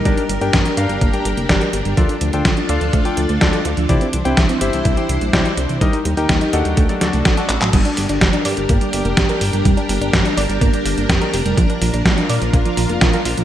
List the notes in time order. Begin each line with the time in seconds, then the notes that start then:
Already playing: A#4
0.05 G1 G3 D4 G4 A#4 D5, kick, closed hi-hat
0.17 D4, closed hi-hat
0.29 G1 G3, closed hi-hat
0.41 G1 D4 G4 A#4 G5, closed hi-hat
0.53 G1 G3, kick, snare, closed hi-hat
0.65 D4, closed hi-hat
0.77 G2 D4 G4 A#4 D5 F5, closed hi-hat
0.89 G1 G3, closed hi-hat
1.01 G1 A#3, kick, closed hi-hat
1.14 G3 D4 G4 A#4 G5, closed hi-hat
1.25 G1 G3, closed hi-hat
1.37 F1 A#3, closed hi-hat
1.49 G1 D4 G4 A#4 D5, kick, snare, closed hi-hat
1.61 A#4, closed hi-hat
1.73 G1 G4, closed hi-hat
1.85 G1 G3, closed hi-hat
1.97 D2 F3 D4 F4 A4 D5, kick, closed hi-hat
2.09 D4, closed hi-hat
2.21 D2 F3, closed hi-hat
2.33 D2 D4 F4 A4 G5, closed hi-hat
2.45 D2 F3, kick, snare, closed hi-hat
2.57 D4, closed hi-hat
2.69 D2 D4 F4 A4 D5 F5, closed hi-hat
2.81 D2 F3, closed hi-hat
2.93 D2 A3, kick, closed hi-hat
3.05 F3 D4 F4 A4 G5, closed hi-hat
3.17 D2 F3, closed hi-hat
3.29 D2 A3, closed hi-hat
3.41 D2 D4 F4 A4 D5, kick, snare, closed hi-hat
3.53 A4, closed hi-hat
3.65 D2 F4, closed hi-hat
3.77 D2 F3, closed hi-hat
3.89 C2 E3 E4 G4 C5 D5, kick, closed hi-hat
4.01 C4, closed hi-hat
4.13 C2 E3, closed hi-hat
4.25 C2 C4 E4 G4 C5 G5, closed hi-hat
4.37 C2 E3, kick, snare, closed hi-hat
4.49 C4, closed hi-hat
4.61 G1 E4 G4 C5 E5, closed hi-hat
4.73 C2 E3, closed hi-hat
4.85 C2 G3, kick, closed hi-hat
4.97 E3 E4 G4 C5 G5, closed hi-hat
5.09 C2 E3, closed hi-hat
5.21 A#1 G3, closed hi-hat
5.33 C2 D4 E4 G4 C5 D5, kick, snare, closed hi-hat
5.45 E4, closed hi-hat
5.57 C2 D4, closed hi-hat
5.69 C2 E3, closed hi-hat
5.81 D#2 G3 D#4 G4 A#4 D#5, kick, closed hi-hat
5.93 D#4, closed hi-hat
6.05 D#2 G3, closed hi-hat
6.17 D#2 D#4 G4 A#4 G5, closed hi-hat
6.29 D#2 G3, kick, snare, closed hi-hat
6.41 D#4, closed hi-hat
6.53 D#2 D4 F#4 A4 D#5 F#5, closed hi-hat
6.65 D#2 G3, closed hi-hat
6.77 D2 A3 D4 F#4 A4, kick, closed hi-hat
6.89 F#3 D4 F#4 A4 D5, closed hi-hat
7.01 D2 F#3 D4 F#4 A4 D5, snare, closed hi-hat
7.13 C2 A3, closed hi-hat
7.25 A1 F#4, kick, snare, closed hi-hat
7.37 D4 F#4 A4 D5, closed hi-hat
7.49 A1 F#4, clap, closed hi-hat
7.61 A1 F#3, clap, closed hi-hat
7.73 G1 G3 D4 G4 A#4, kick, closed hi-hat, crash
7.85 D4, closed hi-hat
7.97 G1 G3, open hi-hat
8.09 G1 D4, closed hi-hat
8.21 G1 G3, kick, snare, closed hi-hat
8.33 D4, closed hi-hat
8.45 G2 D5, open hi-hat
8.57 G1 G3, closed hi-hat
8.69 G1 A#3, kick, closed hi-hat
8.81 G3, closed hi-hat
8.93 G1 G3, open hi-hat
9.05 F1 A#3, closed hi-hat
9.17 G1 G4, kick, snare, closed hi-hat
9.29 A#4, closed hi-hat
9.41 G1 G4, open hi-hat
9.53 G1 G3, closed hi-hat
9.65 F1 G3, kick, closed hi-hat
9.77 D4, closed hi-hat
9.89 G1 G3, open hi-hat
10.01 G1 D4, closed hi-hat
10.13 G1 G3, kick, snare, closed hi-hat
10.25 D4, closed hi-hat
10.37 G1 D5, open hi-hat
10.49 G1 G3, closed hi-hat
10.61 G1 A#3, kick, closed hi-hat
10.73 G3, closed hi-hat
10.85 G1 G3, open hi-hat
10.97 G1 A#3, closed hi-hat
11.09 F1 G4, kick, snare, closed hi-hat
11.21 A#4, closed hi-hat
11.33 F1 G4, open hi-hat
11.45 F1 G3, closed hi-hat
11.57 A#1 F3 F4, kick, closed hi-hat
11.70 D4, closed hi-hat
11.81 A#1 F3, open hi-hat
11.93 A#1 D4, closed hi-hat
12.05 A#1 F3, kick, snare, closed hi-hat
12.18 D4, closed hi-hat
12.29 A#2 D5, open hi-hat
12.41 A#1 F3, closed hi-hat
12.53 A#1 A#3, kick, closed hi-hat
12.65 F3, closed hi-hat
12.77 A#1 F3, open hi-hat
12.89 F1 A#3, closed hi-hat
13.01 A#1 F4, kick, snare, closed hi-hat
13.13 A#4, closed hi-hat
13.25 A#1 F4, open hi-hat
13.37 A#1 F3, closed hi-hat